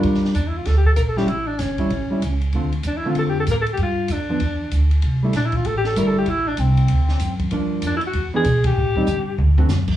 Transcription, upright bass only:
X:1
M:4/4
L:1/8
Q:"Swing" 1/4=193
K:Gdor
V:1 name="Upright bass" clef=bass
G,,2 E,,2 D,,2 B,,,2 | A,,,2 G,,,2 A,,, z ^C,,2 | D,,2 E,,2 F,,2 A,,2 | G,,2 F,,2 E,,2 D,,2 |
C,,2 B,,,2 A,,,2 G,,,2 | A,,,2 C,,2 D,,2 ^F,,2 | G,,2 F,,2 E,,2 =B,,2 | A,,2 G,,2 D,,2 ^F,,2 |]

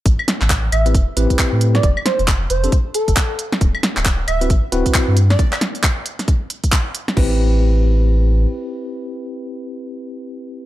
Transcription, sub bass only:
X:1
M:4/4
L:1/16
Q:"Swing 16ths" 1/4=135
K:Am
V:1 name="Sub bass" clef=bass
A,,, z2 A,,,3 A,,,2 E,,, z A,,, z2 A,,3 | F,,, z2 F,,,3 F,,, z4 F,,, z4 | D,,, z2 D,,,3 D,,,2 A,,, z D,,, z2 G,,3 | z16 |
A,,,12 z4 | z16 |]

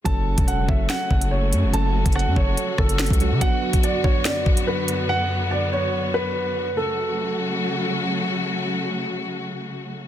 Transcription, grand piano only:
X:1
M:4/4
L:1/8
Q:1/4=143
K:F#m
V:1 name="Grand piano"
a2 f e f2 c2 | a2 f c2 A3 | f2 d c d2 B2 | f2 d c2 B3 |
A6 z2 | z8 |]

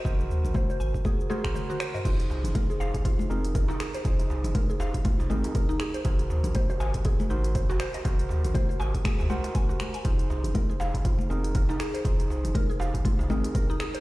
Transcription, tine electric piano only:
X:1
M:4/4
L:1/16
Q:"Swing 16ths" 1/4=120
K:Fphr
V:1 name="Tine electric piano"
[GBc]8- [GBc]2 [GBc] [GBc]4- [GBc] | [EAc]8- [EAc]2 [EAB]6 | [EAc]8- [EAc]2 [EAB]6 | [GBc]8- [GBc]2 [GBc]6 |
[GBc]8- [GBc]2 [GBc]6 | [EAc]8- [EAc]2 [EAB]6 | [EAc]8- [EAc]2 [EAB]6 |]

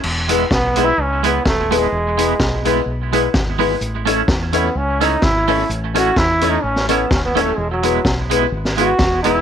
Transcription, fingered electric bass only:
X:1
M:4/4
L:1/8
Q:"Swing" 1/4=127
K:E
V:1 name="Fingered electric bass" clef=bass
E,,,2 B,,,2 C,,2 D,,,2 | E,,,2 B,,,2 B,,,2 G,,,2 | A,,,2 E,,2 C,,2 G,,,2 | A,,,2 E,,2 A,,,2 D,,,2 |
E,,,2 B,,,2 G,,,2 E,,,2 |]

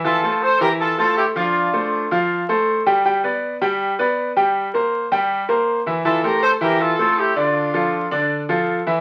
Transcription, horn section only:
X:1
M:4/4
L:1/8
Q:1/4=160
K:F
V:1 name="Horn section"
[FA]2 [Ac] [GB] [FA] [FA] [EG] [DF]- | [DF]3 z4 z | z8 | z8 |
[FA] [GB] [Ac] [GB] [FA]2 [EG] [DF]- | [DF]3 z4 z |]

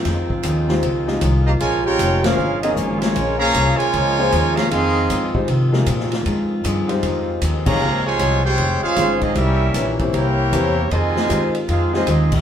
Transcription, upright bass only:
X:1
M:4/4
L:1/8
Q:"Swing" 1/4=155
K:Fm
V:1 name="Upright bass" clef=bass
F,,2 E,,2 D,,2 C,,2 | B,,,2 F,,,2 G,,,2 A,,,2 | B,,,2 C,, z D,,2 E,,2 | F,,2 A,,2 C,2 B,,2 |
A,,2 G,,2 F,,2 E,,2 | D,,2 C,,2 F,,, z A,,,2 | C,,2 B,,,2 C,,2 =E,,2 | F,,2 A,,2 F,,2 E,,2 |]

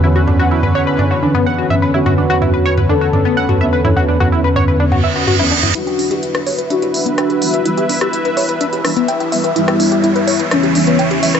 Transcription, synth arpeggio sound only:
X:1
M:4/4
L:1/16
Q:1/4=126
K:Edor
V:1 name="Synth arpeggio sound"
E F D F E B c B D F D B, f F e B | E F D F E B c B D F D B, f F e B | E F D F E B c B D F e F F E D E | E G D G E B c B D G D B, g G e B |
E G D G E B c B D G D B, g G e B | E G D G E B c B D G D B, g G e B |]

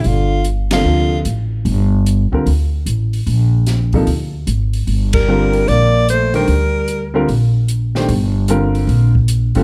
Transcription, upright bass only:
X:1
M:4/4
L:1/8
Q:"Swing" 1/4=150
K:Gm
V:1 name="Upright bass" clef=bass
G,,,4 D,,2 A,,,2 | G,,,3 z D,,2 A,,,2 | B,,,4 D,,2 _A,,,2 | G,,,4 B,,,4 |
D,,4 B,,,4 | G,,,4 B,,,3 G,,, |]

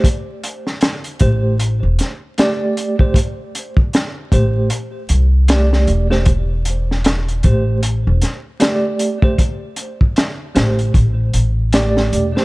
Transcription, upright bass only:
X:1
M:4/4
L:1/16
Q:"Swing 16ths" 1/4=77
K:Am
V:1 name="Upright bass" clef=bass
z6 A,,,3 E,,, z6 | z6 A,,,2 z2 C,,4 E,,,2- | E,,,6 A,,,3 E,,, z6 | z6 A,,,2 A,,,2 A,,,4 E,,, z |]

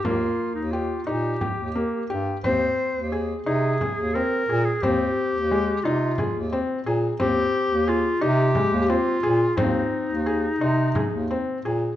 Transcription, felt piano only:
X:1
M:7/8
L:1/8
Q:1/4=88
K:Fdor
V:1 name="Felt piano"
B,2 G E G B, G | C2 A E A C A | C2 A, E A C A | C2 A E A, C A |
C2 A E A C A |]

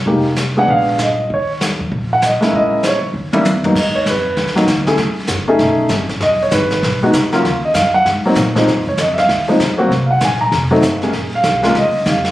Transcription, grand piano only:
X:1
M:4/4
L:1/8
Q:"Swing" 1/4=195
K:Ebm
V:1 name="Grand piano"
z3 g f2 e2 | d z4 g e2 | e2 [=cd] z4 z | e d c3 z3 |
z8 | ^d _d =B3 z3 | z e f g z4 | z d e [_f=f] z4 |
z [fg] a b z4 | z f3 e2 f z |]
V:2 name="Grand piano"
[A,B,E=G] z2 [A,C=DA]3 z2 | z6 z [A,B,D_F]- | [A,B,D_F]2 z3 [=G,B,DF] z [A,,_G,B,CE] | z4 z [G,B,CE] z [=A,D_F_A] |
z3 [=A,DE_A]3 z2 | z4 z [^G,=B,^D^F] z [^F,_B,_D=F] | z4 z [G,B,=CE] z [F,A,CE] | z4 z [F,A,=CE] z [G,B,CG] |
z4 z [G,=A,=CE] z [_A,B,DA] | z3 [A,B,DF] z4 |]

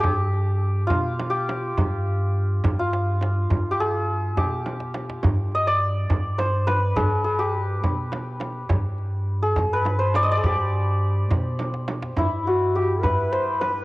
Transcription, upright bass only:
X:1
M:6/8
L:1/8
Q:3/8=69
K:none
V:1 name="Upright bass" clef=bass
G,,3 B,,3 | G,,3 G,,3 | G,,3 B,,3 | G,,3 G,,3 |
G,,3 B,,3 | G,,3 G,,3 | G,,3 B,,3 | G,,3 G,,3 |]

